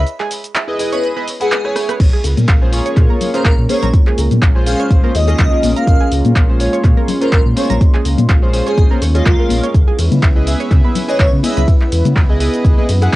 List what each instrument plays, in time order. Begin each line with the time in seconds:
0.07 closed hi-hat, cabasa
0.20 synth arpeggio sound G#4, clap
0.31 open hi-hat, cabasa
0.44 closed hi-hat, cabasa
0.55 synth arpeggio sound E5, clap, closed hi-hat, cabasa
0.68 analog polysynth E4 G#4 B4 D#5
0.79 analog polysynth E4 G#4 B4 D#5, open hi-hat, cabasa
0.92 digital synth lead B4, synth arpeggio sound C#5, closed hi-hat, cabasa
1.03 closed hi-hat, cabasa
1.16 analog polysynth E4 G#4 B4 D#5, synth arpeggio sound B4
1.28 open hi-hat, cabasa
1.40 analog polysynth E4 G#4 B4 F#5, digital synth lead G#4, closed hi-hat, cabasa
1.52 synth arpeggio sound B4, clap, closed hi-hat, cabasa
1.64 analog polysynth E4 G#4 B4 C#5, cross-stick
1.76 cross-stick, open hi-hat, cabasa
1.89 synth arpeggio sound B4, cross-stick, closed hi-hat, cabasa
2.00 sub bass A#1, analog synth pad G#3 A#3 C#4 F4 A#4, kick, closed hi-hat, crash, cabasa
2.13 synth arpeggio sound G#4
2.24 sub bass C#2, open hi-hat, high bongo, cabasa
2.37 sub bass A#2, closed hi-hat, high conga, low conga, cabasa
2.49 sub bass A#1, synth arpeggio sound F5, kick, clap, closed hi-hat, cabasa
2.61 analog polysynth C#4 F4 G#4 C5
2.72 analog polysynth C#4 F4 G#4 C#5, open hi-hat, cabasa
2.86 synth arpeggio sound C#5, closed hi-hat, cabasa
2.97 sub bass A#2, kick, clap, closed hi-hat, high bongo, cabasa
3.09 synth arpeggio sound A#4, high conga
3.21 open hi-hat, low conga, cabasa
3.34 analog polysynth C#4 F4 G#4 C5, digital synth lead A#4, closed hi-hat, cabasa
3.45 sub bass A#1, digital synth lead A#4, synth arpeggio sound F5, kick, clap, closed hi-hat, cabasa
3.59 sub bass A#2
3.69 analog polysynth C#4 F4 G#4 C5, digital synth lead C#5, open hi-hat, high conga, cabasa
3.83 sub bass A#1, synth arpeggio sound A#5, closed hi-hat, low conga, cabasa
3.94 kick, closed hi-hat, cabasa
4.07 synth arpeggio sound G#4, clap
4.18 sub bass C#2, open hi-hat, high bongo, cabasa
4.31 sub bass A#2, closed hi-hat, high conga, low conga, cabasa
4.42 sub bass A#1, synth arpeggio sound F5, kick, clap, closed hi-hat, cabasa
4.55 analog polysynth C#4 F4 G#4 C5
4.66 analog polysynth C#4 F4 G#4 C5, digital synth lead F5, open hi-hat, cabasa
4.80 synth arpeggio sound C#5, closed hi-hat, cabasa
4.91 sub bass A#1, kick, closed hi-hat, cabasa
5.03 analog polysynth C#4 F4 G#4 C5, synth arpeggio sound A#4, high conga
5.15 sub bass D#2, digital synth lead D#5, open hi-hat, high bongo, cabasa
5.27 analog polysynth C#4 F4 G#4 D#5, closed hi-hat, high bongo, cabasa
5.39 sub bass C#2, synth arpeggio sound F5, kick, clap, closed hi-hat, low conga, cabasa
5.51 analog polysynth C#4 F4 G#4 A#4
5.63 sub bass A#1, open hi-hat, high conga, cabasa
5.76 digital synth lead F5, synth arpeggio sound A#5, closed hi-hat, cabasa
5.87 sub bass A#1, analog synth pad C6, kick, closed hi-hat, cabasa
6.01 synth arpeggio sound G#4
6.12 sub bass C#2, open hi-hat, high bongo, cabasa
6.24 sub bass A#2, closed hi-hat, high conga, low conga, cabasa
6.36 sub bass A#1, synth arpeggio sound F5, kick, clap, closed hi-hat, cabasa
6.48 analog polysynth C#4 F4 G#4 C5
6.59 analog polysynth C#4 F4 G#4 C#5, open hi-hat, cabasa
6.73 synth arpeggio sound C#5, closed hi-hat, cabasa
6.84 sub bass A#2, kick, clap, closed hi-hat, high bongo, cabasa
6.97 synth arpeggio sound A#4, high conga
7.08 open hi-hat, low conga, cabasa
7.21 analog polysynth C#4 F4 G#4 C5, digital synth lead A#4, closed hi-hat, cabasa
7.32 sub bass A#1, digital synth lead A#4, synth arpeggio sound F5, kick, clap, closed hi-hat, cabasa
7.46 sub bass A#2
7.56 analog polysynth C#4 F4 G#4 C5, digital synth lead C#5, open hi-hat, high conga, cabasa
7.70 sub bass A#1, synth arpeggio sound A#5, closed hi-hat, low conga, cabasa
7.81 kick, closed hi-hat, cabasa
7.94 synth arpeggio sound G#4, clap
8.05 sub bass C#2, open hi-hat, high bongo, cabasa
8.17 sub bass A#2, closed hi-hat, high conga, low conga, cabasa
8.29 sub bass A#1, synth arpeggio sound F5, kick, clap, closed hi-hat, cabasa
8.42 analog polysynth C#4 F4 G#4 C5
8.53 analog polysynth C#4 F4 G#4 C5, open hi-hat, cabasa
8.67 digital synth lead G#4, synth arpeggio sound C#5, closed hi-hat, cabasa
8.78 sub bass A#1, kick, closed hi-hat, cabasa
8.90 analog polysynth C#4 F4 G#4 C5, synth arpeggio sound A#4, high conga
9.01 sub bass D#2, synth arpeggio sound C#6, open hi-hat, high bongo, cabasa
9.14 analog polysynth C#4 F4 G#4 D#5, digital synth lead F4, closed hi-hat, high bongo, cabasa
9.26 sub bass C#2, synth arpeggio sound A#4, kick, clap, closed hi-hat, low conga, cabasa
9.39 analog polysynth C#4 F4 G#4 A#4
9.49 sub bass A#1, open hi-hat, high conga, cabasa
9.63 synth arpeggio sound C#5, closed hi-hat, cabasa
9.74 sub bass C#2, analog synth pad B3 E4 B4, kick, closed hi-hat, cabasa
9.88 synth arpeggio sound G#4
9.99 sub bass E2, open hi-hat, ride, high bongo, cabasa
10.11 sub bass C#3, closed hi-hat, high conga, low conga, cabasa
10.23 sub bass C#2, synth arpeggio sound E5, kick, clap, closed hi-hat, cabasa
10.35 analog polysynth E4 G#4 B4 D#5
10.46 analog polysynth E4 G#4 B4 E5, open hi-hat, ride, cabasa
10.60 synth arpeggio sound C#5, closed hi-hat, cabasa
10.71 sub bass C#3, kick, clap, closed hi-hat, high bongo, cabasa
10.84 synth arpeggio sound B4, high conga
10.95 open hi-hat, ride, low conga, cabasa
11.08 analog polysynth E4 G#4 B4 D#5, digital synth lead C#5, closed hi-hat, cabasa
11.20 sub bass C#2, digital synth lead C#5, synth arpeggio sound E5, kick, clap, closed hi-hat, cabasa
11.33 sub bass C#3
11.43 analog polysynth E4 G#4 B4 D#5, digital synth lead E5, open hi-hat, ride, high conga, cabasa
11.57 sub bass C#2, synth arpeggio sound B5, closed hi-hat, low conga, cabasa
11.68 kick, closed hi-hat, cabasa
11.81 clap
11.92 sub bass E2, open hi-hat, ride, high bongo, cabasa
12.05 sub bass C#3, closed hi-hat, high conga, low conga, cabasa
12.16 sub bass C#2, kick, clap, closed hi-hat, cabasa
12.29 analog polysynth E4 G#4 B4 D#5
12.40 analog polysynth E4 G#4 B4 D#5, open hi-hat, ride, cabasa
12.54 closed hi-hat, cabasa
12.65 sub bass C#2, kick, closed hi-hat, cabasa
12.77 analog polysynth E4 G#4 B4 D#5, high conga
12.89 sub bass F#2, open hi-hat, ride, high bongo, cabasa
13.01 analog polysynth E4 G#4 B4 F#5, closed hi-hat, high bongo, cabasa